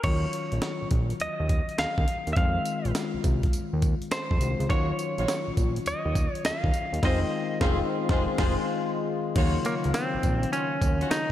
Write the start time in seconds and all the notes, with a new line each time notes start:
0.04 D#2 D#3 F#3 C#4 F4 C#5, kick, closed hi-hat, crash
0.33 closed hi-hat
0.52 A#1, closed hi-hat
0.62 snare, closed hi-hat
0.82 A#1
0.91 A#1, kick, closed hi-hat
1.10 closed hi-hat
1.20 D#2 D#5, closed hi-hat
1.40 D#2
1.49 kick, closed hi-hat
1.69 closed hi-hat
1.78 D#2 F5, snare, closed hi-hat
1.98 D#2, kick
2.08 closed hi-hat
2.27 D#2, closed hi-hat
2.33 F2 D#3 G#3 E5, kick, closed hi-hat
2.37 C4 F4 F5
2.65 closed hi-hat, tambourine
2.85 A#1, closed hi-hat
2.95 snare, closed hi-hat, tambourine
3.14 C2
3.24 C2, kick, closed hi-hat, tambourine
3.43 kick, closed hi-hat
3.53 D#2, closed hi-hat, tambourine
3.73 D#2
3.82 kick, closed hi-hat, tambourine
4.02 closed hi-hat
4.11 C5, snare, closed hi-hat, tambourine
4.31 F2, kick
4.40 C2 D#3 G#3 C4 F4, closed hi-hat, tambourine
4.60 C#2, closed hi-hat
4.69 D#2 D#3 F#3 C#4 D#4 F4 F#4 C#5, kick, closed hi-hat
4.99 closed hi-hat, tambourine
5.18 A#1 D#4 F4 F#4 C#5, closed hi-hat
5.28 snare, closed hi-hat, tambourine
5.48 A#1
5.57 A#1, kick, closed hi-hat, tambourine
5.76 closed hi-hat
5.86 D#2 D#5, closed hi-hat, tambourine
6.05 D#2
6.15 kick, closed hi-hat, tambourine
6.34 C#5, closed hi-hat
6.44 D#2 F5, snare, closed hi-hat, tambourine
6.64 D#2, kick
6.73 closed hi-hat, tambourine
6.93 D#2, closed hi-hat
7.02 F1 D#3 G#3 C4 D#4 F4 G#4 C5 D#5, kick, snare, crash
7.60 F1 D#3 G#3 C4 D#4 F4 G#4 C5, kick, snare
8.09 F1 G#3 D#4 F4 G#4 C5, kick, snare
8.38 F1 G#3 D#4 F4 G#4 C5, kick, snare, crash
9.35 D#2 C#3 D#3 F#3 A#3 D#4 F4 F#4 C#5, kick, closed hi-hat, crash
9.65 A#3 D#4 F4 F#4 C#5, closed hi-hat, tambourine
9.84 C#2, closed hi-hat
9.94 C4, snare, closed hi-hat, tambourine
10.14 A#1
10.23 A#1, kick, closed hi-hat, tambourine
10.43 closed hi-hat
10.52 C#4 D#4 F4 F#4 C#5, closed hi-hat, tambourine
10.82 D#2, kick, closed hi-hat, tambourine
11.01 D#4 F4 F#4 C#5, closed hi-hat
11.11 D#4, snare, closed hi-hat, tambourine